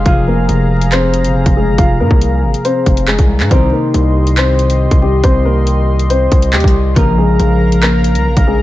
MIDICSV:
0, 0, Header, 1, 6, 480
1, 0, Start_track
1, 0, Key_signature, -4, "minor"
1, 0, Tempo, 431655
1, 64, Time_signature, 4, 2, 24, 8
1, 9589, End_track
2, 0, Start_track
2, 0, Title_t, "Analog synth pad"
2, 0, Program_c, 0, 89
2, 0, Note_on_c, 0, 68, 76
2, 0, Note_on_c, 0, 77, 71
2, 64, Note_on_c, 0, 82, 85
2, 3859, Note_off_c, 0, 77, 0
2, 3860, Note_off_c, 0, 68, 0
2, 3865, Note_off_c, 0, 82, 0
2, 3904, Note_on_c, 0, 67, 76
2, 3904, Note_on_c, 0, 75, 71
2, 3904, Note_on_c, 0, 84, 86
2, 7706, Note_off_c, 0, 67, 0
2, 7706, Note_off_c, 0, 75, 0
2, 7706, Note_off_c, 0, 84, 0
2, 7744, Note_on_c, 0, 70, 80
2, 7744, Note_on_c, 0, 77, 72
2, 7745, Note_on_c, 0, 82, 82
2, 9589, Note_off_c, 0, 70, 0
2, 9589, Note_off_c, 0, 77, 0
2, 9589, Note_off_c, 0, 82, 0
2, 9589, End_track
3, 0, Start_track
3, 0, Title_t, "Grand piano"
3, 0, Program_c, 1, 0
3, 64, Note_on_c, 1, 77, 88
3, 73, Note_on_c, 1, 65, 63
3, 265, Note_off_c, 1, 77, 0
3, 270, Note_off_c, 1, 65, 0
3, 305, Note_on_c, 1, 70, 71
3, 314, Note_on_c, 1, 58, 58
3, 981, Note_off_c, 1, 70, 0
3, 986, Note_off_c, 1, 58, 0
3, 1024, Note_on_c, 1, 72, 87
3, 1033, Note_on_c, 1, 60, 72
3, 1701, Note_off_c, 1, 72, 0
3, 1706, Note_off_c, 1, 60, 0
3, 1743, Note_on_c, 1, 68, 80
3, 1753, Note_on_c, 1, 56, 60
3, 1945, Note_off_c, 1, 68, 0
3, 1950, Note_off_c, 1, 56, 0
3, 1984, Note_on_c, 1, 77, 89
3, 1993, Note_on_c, 1, 65, 73
3, 2185, Note_off_c, 1, 77, 0
3, 2190, Note_off_c, 1, 65, 0
3, 2225, Note_on_c, 1, 70, 80
3, 2235, Note_on_c, 1, 58, 64
3, 2901, Note_off_c, 1, 70, 0
3, 2906, Note_off_c, 1, 58, 0
3, 2943, Note_on_c, 1, 72, 85
3, 2952, Note_on_c, 1, 60, 71
3, 3395, Note_off_c, 1, 72, 0
3, 3399, Note_off_c, 1, 60, 0
3, 3423, Note_on_c, 1, 68, 93
3, 3431, Note_on_c, 1, 56, 68
3, 3874, Note_off_c, 1, 68, 0
3, 3879, Note_off_c, 1, 56, 0
3, 3905, Note_on_c, 1, 72, 81
3, 3914, Note_on_c, 1, 60, 68
3, 4106, Note_off_c, 1, 72, 0
3, 4111, Note_off_c, 1, 60, 0
3, 4144, Note_on_c, 1, 70, 71
3, 4154, Note_on_c, 1, 58, 58
3, 4821, Note_off_c, 1, 70, 0
3, 4826, Note_off_c, 1, 58, 0
3, 4864, Note_on_c, 1, 72, 84
3, 4872, Note_on_c, 1, 60, 65
3, 5541, Note_off_c, 1, 72, 0
3, 5545, Note_off_c, 1, 60, 0
3, 5584, Note_on_c, 1, 67, 77
3, 5592, Note_on_c, 1, 55, 61
3, 5785, Note_off_c, 1, 67, 0
3, 5790, Note_off_c, 1, 55, 0
3, 5824, Note_on_c, 1, 72, 91
3, 5834, Note_on_c, 1, 60, 74
3, 6025, Note_off_c, 1, 72, 0
3, 6031, Note_off_c, 1, 60, 0
3, 6064, Note_on_c, 1, 70, 84
3, 6073, Note_on_c, 1, 58, 65
3, 6741, Note_off_c, 1, 70, 0
3, 6746, Note_off_c, 1, 58, 0
3, 6784, Note_on_c, 1, 72, 88
3, 6793, Note_on_c, 1, 60, 64
3, 7235, Note_off_c, 1, 72, 0
3, 7240, Note_off_c, 1, 60, 0
3, 7266, Note_on_c, 1, 67, 89
3, 7275, Note_on_c, 1, 55, 70
3, 7716, Note_off_c, 1, 67, 0
3, 7721, Note_off_c, 1, 55, 0
3, 7747, Note_on_c, 1, 70, 79
3, 7755, Note_on_c, 1, 58, 66
3, 7947, Note_off_c, 1, 70, 0
3, 7952, Note_off_c, 1, 58, 0
3, 7983, Note_on_c, 1, 68, 75
3, 7993, Note_on_c, 1, 56, 54
3, 8660, Note_off_c, 1, 68, 0
3, 8665, Note_off_c, 1, 56, 0
3, 8702, Note_on_c, 1, 70, 92
3, 8712, Note_on_c, 1, 58, 66
3, 9380, Note_off_c, 1, 70, 0
3, 9385, Note_off_c, 1, 58, 0
3, 9423, Note_on_c, 1, 68, 79
3, 9432, Note_on_c, 1, 56, 59
3, 9589, Note_off_c, 1, 56, 0
3, 9589, Note_off_c, 1, 68, 0
3, 9589, End_track
4, 0, Start_track
4, 0, Title_t, "Harp"
4, 0, Program_c, 2, 46
4, 49, Note_on_c, 2, 48, 63
4, 57, Note_on_c, 2, 53, 59
4, 66, Note_on_c, 2, 56, 57
4, 74, Note_on_c, 2, 65, 62
4, 83, Note_on_c, 2, 68, 70
4, 3865, Note_off_c, 2, 65, 0
4, 3869, Note_off_c, 2, 68, 0
4, 3870, Note_off_c, 2, 48, 0
4, 3884, Note_on_c, 2, 48, 72
4, 3892, Note_on_c, 2, 51, 66
4, 3900, Note_on_c, 2, 55, 56
4, 3909, Note_on_c, 2, 63, 64
4, 3917, Note_on_c, 2, 67, 70
4, 3959, Note_off_c, 2, 53, 0
4, 3959, Note_off_c, 2, 56, 0
4, 7702, Note_off_c, 2, 63, 0
4, 7706, Note_off_c, 2, 67, 0
4, 7721, Note_on_c, 2, 49, 65
4, 7730, Note_on_c, 2, 53, 65
4, 7738, Note_on_c, 2, 58, 61
4, 7747, Note_on_c, 2, 65, 57
4, 7756, Note_on_c, 2, 70, 73
4, 7799, Note_off_c, 2, 51, 0
4, 7799, Note_off_c, 2, 55, 0
4, 7800, Note_off_c, 2, 48, 0
4, 9589, Note_off_c, 2, 49, 0
4, 9589, Note_off_c, 2, 53, 0
4, 9589, Note_off_c, 2, 58, 0
4, 9589, Note_off_c, 2, 65, 0
4, 9589, Note_off_c, 2, 70, 0
4, 9589, End_track
5, 0, Start_track
5, 0, Title_t, "808-style bass"
5, 0, Program_c, 3, 38
5, 64, Note_on_c, 3, 29, 112
5, 525, Note_off_c, 3, 29, 0
5, 543, Note_on_c, 3, 29, 105
5, 1384, Note_on_c, 3, 31, 103
5, 1400, Note_off_c, 3, 29, 0
5, 1503, Note_on_c, 3, 29, 98
5, 1520, Note_off_c, 3, 31, 0
5, 1618, Note_off_c, 3, 29, 0
5, 1624, Note_on_c, 3, 29, 103
5, 1863, Note_on_c, 3, 31, 102
5, 1880, Note_off_c, 3, 29, 0
5, 1978, Note_off_c, 3, 31, 0
5, 1984, Note_on_c, 3, 29, 110
5, 2223, Note_on_c, 3, 44, 102
5, 2240, Note_off_c, 3, 29, 0
5, 2338, Note_off_c, 3, 44, 0
5, 2342, Note_on_c, 3, 36, 105
5, 2703, Note_on_c, 3, 32, 94
5, 2720, Note_off_c, 3, 36, 0
5, 2818, Note_off_c, 3, 32, 0
5, 3185, Note_on_c, 3, 29, 100
5, 3530, Note_off_c, 3, 29, 0
5, 3544, Note_on_c, 3, 36, 104
5, 3784, Note_on_c, 3, 44, 101
5, 3801, Note_off_c, 3, 36, 0
5, 3898, Note_off_c, 3, 44, 0
5, 3904, Note_on_c, 3, 36, 115
5, 4134, Note_off_c, 3, 36, 0
5, 4383, Note_on_c, 3, 36, 104
5, 5420, Note_off_c, 3, 36, 0
5, 5463, Note_on_c, 3, 36, 102
5, 5809, Note_off_c, 3, 36, 0
5, 5823, Note_on_c, 3, 36, 116
5, 6979, Note_off_c, 3, 36, 0
5, 7024, Note_on_c, 3, 36, 106
5, 7264, Note_on_c, 3, 39, 98
5, 7280, Note_off_c, 3, 36, 0
5, 7378, Note_off_c, 3, 39, 0
5, 7384, Note_on_c, 3, 36, 103
5, 7730, Note_off_c, 3, 36, 0
5, 7744, Note_on_c, 3, 34, 116
5, 8205, Note_off_c, 3, 34, 0
5, 8224, Note_on_c, 3, 34, 104
5, 9064, Note_on_c, 3, 36, 106
5, 9080, Note_off_c, 3, 34, 0
5, 9184, Note_on_c, 3, 34, 95
5, 9201, Note_off_c, 3, 36, 0
5, 9298, Note_off_c, 3, 34, 0
5, 9305, Note_on_c, 3, 34, 102
5, 9544, Note_on_c, 3, 36, 101
5, 9561, Note_off_c, 3, 34, 0
5, 9589, Note_off_c, 3, 36, 0
5, 9589, End_track
6, 0, Start_track
6, 0, Title_t, "Drums"
6, 63, Note_on_c, 9, 42, 91
6, 64, Note_on_c, 9, 36, 117
6, 174, Note_off_c, 9, 42, 0
6, 175, Note_off_c, 9, 36, 0
6, 543, Note_on_c, 9, 42, 92
6, 655, Note_off_c, 9, 42, 0
6, 906, Note_on_c, 9, 42, 69
6, 1017, Note_off_c, 9, 42, 0
6, 1024, Note_on_c, 9, 39, 113
6, 1024, Note_on_c, 9, 42, 83
6, 1135, Note_off_c, 9, 39, 0
6, 1136, Note_off_c, 9, 42, 0
6, 1263, Note_on_c, 9, 42, 78
6, 1375, Note_off_c, 9, 42, 0
6, 1384, Note_on_c, 9, 42, 82
6, 1496, Note_off_c, 9, 42, 0
6, 1623, Note_on_c, 9, 42, 83
6, 1624, Note_on_c, 9, 36, 92
6, 1735, Note_off_c, 9, 36, 0
6, 1735, Note_off_c, 9, 42, 0
6, 1983, Note_on_c, 9, 36, 116
6, 1983, Note_on_c, 9, 42, 91
6, 2094, Note_off_c, 9, 42, 0
6, 2095, Note_off_c, 9, 36, 0
6, 2342, Note_on_c, 9, 36, 95
6, 2454, Note_off_c, 9, 36, 0
6, 2463, Note_on_c, 9, 42, 92
6, 2574, Note_off_c, 9, 42, 0
6, 2825, Note_on_c, 9, 42, 70
6, 2937, Note_off_c, 9, 42, 0
6, 2945, Note_on_c, 9, 42, 84
6, 3056, Note_off_c, 9, 42, 0
6, 3184, Note_on_c, 9, 42, 76
6, 3185, Note_on_c, 9, 36, 90
6, 3295, Note_off_c, 9, 42, 0
6, 3296, Note_off_c, 9, 36, 0
6, 3304, Note_on_c, 9, 42, 84
6, 3415, Note_off_c, 9, 42, 0
6, 3423, Note_on_c, 9, 39, 124
6, 3423, Note_on_c, 9, 42, 51
6, 3534, Note_off_c, 9, 39, 0
6, 3534, Note_off_c, 9, 42, 0
6, 3543, Note_on_c, 9, 42, 87
6, 3544, Note_on_c, 9, 36, 95
6, 3654, Note_off_c, 9, 42, 0
6, 3655, Note_off_c, 9, 36, 0
6, 3783, Note_on_c, 9, 39, 70
6, 3894, Note_off_c, 9, 39, 0
6, 3903, Note_on_c, 9, 42, 88
6, 3904, Note_on_c, 9, 36, 115
6, 4014, Note_off_c, 9, 42, 0
6, 4015, Note_off_c, 9, 36, 0
6, 4384, Note_on_c, 9, 42, 92
6, 4495, Note_off_c, 9, 42, 0
6, 4745, Note_on_c, 9, 42, 71
6, 4856, Note_off_c, 9, 42, 0
6, 4863, Note_on_c, 9, 39, 113
6, 4864, Note_on_c, 9, 42, 83
6, 4974, Note_off_c, 9, 39, 0
6, 4975, Note_off_c, 9, 42, 0
6, 5103, Note_on_c, 9, 42, 78
6, 5215, Note_off_c, 9, 42, 0
6, 5223, Note_on_c, 9, 42, 84
6, 5335, Note_off_c, 9, 42, 0
6, 5463, Note_on_c, 9, 42, 86
6, 5464, Note_on_c, 9, 36, 96
6, 5574, Note_off_c, 9, 42, 0
6, 5575, Note_off_c, 9, 36, 0
6, 5822, Note_on_c, 9, 42, 89
6, 5823, Note_on_c, 9, 36, 119
6, 5933, Note_off_c, 9, 42, 0
6, 5934, Note_off_c, 9, 36, 0
6, 6302, Note_on_c, 9, 42, 93
6, 6413, Note_off_c, 9, 42, 0
6, 6665, Note_on_c, 9, 42, 66
6, 6776, Note_off_c, 9, 42, 0
6, 6784, Note_on_c, 9, 42, 85
6, 6895, Note_off_c, 9, 42, 0
6, 7023, Note_on_c, 9, 42, 75
6, 7024, Note_on_c, 9, 36, 88
6, 7134, Note_off_c, 9, 42, 0
6, 7136, Note_off_c, 9, 36, 0
6, 7143, Note_on_c, 9, 42, 83
6, 7254, Note_off_c, 9, 42, 0
6, 7262, Note_on_c, 9, 39, 123
6, 7263, Note_on_c, 9, 42, 49
6, 7343, Note_off_c, 9, 42, 0
6, 7343, Note_on_c, 9, 42, 68
6, 7373, Note_off_c, 9, 39, 0
6, 7384, Note_on_c, 9, 36, 95
6, 7423, Note_off_c, 9, 42, 0
6, 7423, Note_on_c, 9, 42, 82
6, 7495, Note_off_c, 9, 36, 0
6, 7534, Note_off_c, 9, 42, 0
6, 7743, Note_on_c, 9, 42, 93
6, 7744, Note_on_c, 9, 36, 114
6, 7854, Note_off_c, 9, 42, 0
6, 7855, Note_off_c, 9, 36, 0
6, 8223, Note_on_c, 9, 42, 92
6, 8334, Note_off_c, 9, 42, 0
6, 8586, Note_on_c, 9, 42, 72
6, 8697, Note_off_c, 9, 42, 0
6, 8705, Note_on_c, 9, 39, 110
6, 8705, Note_on_c, 9, 42, 85
6, 8816, Note_off_c, 9, 39, 0
6, 8816, Note_off_c, 9, 42, 0
6, 8944, Note_on_c, 9, 42, 78
6, 9055, Note_off_c, 9, 42, 0
6, 9065, Note_on_c, 9, 42, 84
6, 9176, Note_off_c, 9, 42, 0
6, 9304, Note_on_c, 9, 36, 99
6, 9304, Note_on_c, 9, 42, 82
6, 9415, Note_off_c, 9, 42, 0
6, 9416, Note_off_c, 9, 36, 0
6, 9589, End_track
0, 0, End_of_file